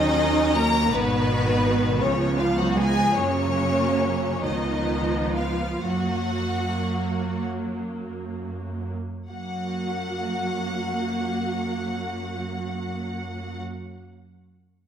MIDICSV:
0, 0, Header, 1, 6, 480
1, 0, Start_track
1, 0, Key_signature, 6, "major"
1, 0, Tempo, 733496
1, 602, Time_signature, 6, 3, 24, 8
1, 1563, Tempo, 778210
1, 2043, Tempo, 823045
1, 2523, Tempo, 888889
1, 3003, Tempo, 969305
1, 3483, Tempo, 1050788
1, 3963, Tempo, 1149425
1, 4443, Tempo, 1244813
1, 7075, End_track
2, 0, Start_track
2, 0, Title_t, "Violin section"
2, 0, Program_c, 0, 48
2, 0, Note_on_c, 0, 75, 97
2, 352, Note_off_c, 0, 75, 0
2, 365, Note_on_c, 0, 82, 100
2, 599, Note_on_c, 0, 71, 96
2, 603, Note_off_c, 0, 82, 0
2, 1316, Note_on_c, 0, 73, 83
2, 1318, Note_off_c, 0, 71, 0
2, 1561, Note_off_c, 0, 73, 0
2, 1563, Note_on_c, 0, 77, 78
2, 1676, Note_on_c, 0, 78, 76
2, 1681, Note_off_c, 0, 77, 0
2, 1798, Note_off_c, 0, 78, 0
2, 1798, Note_on_c, 0, 80, 91
2, 2040, Note_on_c, 0, 73, 88
2, 2041, Note_off_c, 0, 80, 0
2, 2756, Note_off_c, 0, 73, 0
2, 2764, Note_on_c, 0, 75, 68
2, 3231, Note_off_c, 0, 75, 0
2, 3239, Note_on_c, 0, 77, 65
2, 3479, Note_off_c, 0, 77, 0
2, 3484, Note_on_c, 0, 78, 62
2, 4198, Note_off_c, 0, 78, 0
2, 4925, Note_on_c, 0, 78, 58
2, 6583, Note_off_c, 0, 78, 0
2, 7075, End_track
3, 0, Start_track
3, 0, Title_t, "Violin section"
3, 0, Program_c, 1, 48
3, 0, Note_on_c, 1, 63, 89
3, 363, Note_off_c, 1, 63, 0
3, 366, Note_on_c, 1, 70, 86
3, 603, Note_on_c, 1, 59, 89
3, 604, Note_off_c, 1, 70, 0
3, 1305, Note_off_c, 1, 59, 0
3, 1319, Note_on_c, 1, 61, 73
3, 1563, Note_off_c, 1, 61, 0
3, 1565, Note_on_c, 1, 65, 74
3, 1682, Note_off_c, 1, 65, 0
3, 1682, Note_on_c, 1, 66, 72
3, 1799, Note_off_c, 1, 66, 0
3, 1807, Note_on_c, 1, 68, 79
3, 2046, Note_off_c, 1, 68, 0
3, 2046, Note_on_c, 1, 61, 74
3, 2759, Note_off_c, 1, 61, 0
3, 2765, Note_on_c, 1, 63, 61
3, 3237, Note_on_c, 1, 65, 54
3, 3241, Note_off_c, 1, 63, 0
3, 3483, Note_off_c, 1, 65, 0
3, 3484, Note_on_c, 1, 66, 60
3, 4184, Note_off_c, 1, 66, 0
3, 4926, Note_on_c, 1, 78, 45
3, 6583, Note_off_c, 1, 78, 0
3, 7075, End_track
4, 0, Start_track
4, 0, Title_t, "Viola section"
4, 0, Program_c, 2, 48
4, 0, Note_on_c, 2, 54, 66
4, 0, Note_on_c, 2, 61, 71
4, 585, Note_off_c, 2, 61, 0
4, 598, Note_on_c, 2, 51, 73
4, 599, Note_on_c, 2, 59, 70
4, 600, Note_off_c, 2, 54, 0
4, 1303, Note_off_c, 2, 51, 0
4, 1303, Note_off_c, 2, 59, 0
4, 1317, Note_on_c, 2, 59, 68
4, 1319, Note_on_c, 2, 53, 65
4, 2028, Note_off_c, 2, 59, 0
4, 2043, Note_off_c, 2, 53, 0
4, 2045, Note_on_c, 2, 58, 65
4, 2047, Note_on_c, 2, 54, 63
4, 2746, Note_off_c, 2, 54, 0
4, 2758, Note_on_c, 2, 53, 59
4, 2758, Note_on_c, 2, 59, 56
4, 2759, Note_off_c, 2, 58, 0
4, 3483, Note_off_c, 2, 53, 0
4, 3483, Note_off_c, 2, 59, 0
4, 3484, Note_on_c, 2, 54, 51
4, 3485, Note_on_c, 2, 58, 55
4, 4782, Note_off_c, 2, 54, 0
4, 4782, Note_off_c, 2, 58, 0
4, 4923, Note_on_c, 2, 66, 49
4, 4924, Note_on_c, 2, 58, 46
4, 6581, Note_off_c, 2, 58, 0
4, 6581, Note_off_c, 2, 66, 0
4, 7075, End_track
5, 0, Start_track
5, 0, Title_t, "Cello section"
5, 0, Program_c, 3, 48
5, 0, Note_on_c, 3, 51, 77
5, 362, Note_off_c, 3, 51, 0
5, 363, Note_on_c, 3, 58, 77
5, 597, Note_off_c, 3, 58, 0
5, 603, Note_on_c, 3, 47, 89
5, 1317, Note_on_c, 3, 49, 80
5, 1320, Note_off_c, 3, 47, 0
5, 1562, Note_off_c, 3, 49, 0
5, 1563, Note_on_c, 3, 53, 69
5, 1681, Note_off_c, 3, 53, 0
5, 1685, Note_on_c, 3, 54, 71
5, 1800, Note_on_c, 3, 56, 73
5, 1803, Note_off_c, 3, 54, 0
5, 2040, Note_on_c, 3, 49, 75
5, 2043, Note_off_c, 3, 56, 0
5, 2757, Note_off_c, 3, 49, 0
5, 2760, Note_on_c, 3, 51, 64
5, 3229, Note_off_c, 3, 51, 0
5, 3239, Note_on_c, 3, 53, 58
5, 3484, Note_off_c, 3, 53, 0
5, 3485, Note_on_c, 3, 54, 58
5, 4185, Note_off_c, 3, 54, 0
5, 4923, Note_on_c, 3, 54, 47
5, 6580, Note_off_c, 3, 54, 0
5, 7075, End_track
6, 0, Start_track
6, 0, Title_t, "Double bass section"
6, 0, Program_c, 4, 48
6, 0, Note_on_c, 4, 39, 80
6, 586, Note_off_c, 4, 39, 0
6, 597, Note_on_c, 4, 32, 69
6, 1317, Note_off_c, 4, 32, 0
6, 1321, Note_on_c, 4, 37, 78
6, 2042, Note_on_c, 4, 42, 67
6, 2044, Note_off_c, 4, 37, 0
6, 2744, Note_off_c, 4, 42, 0
6, 2757, Note_on_c, 4, 37, 57
6, 3483, Note_off_c, 4, 37, 0
6, 3486, Note_on_c, 4, 42, 46
6, 4783, Note_off_c, 4, 42, 0
6, 4923, Note_on_c, 4, 42, 46
6, 6581, Note_off_c, 4, 42, 0
6, 7075, End_track
0, 0, End_of_file